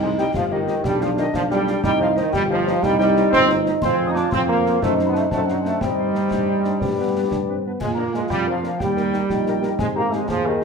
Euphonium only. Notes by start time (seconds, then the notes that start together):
Already playing: D#4
0.35 G4
0.85 D4
1.84 D#4
2.34 G4
2.83 D#4
3.84 F4
4.82 D#4
5.32 D4
5.82 C4
6.32 D4
6.49 D#4
6.65 D4
6.82 C4
7.00 B3
7.31 D4
7.48 C4
7.66 B3
7.83 F4
8.81 G4
9.31 D#4
9.79 C4
10.30 G#4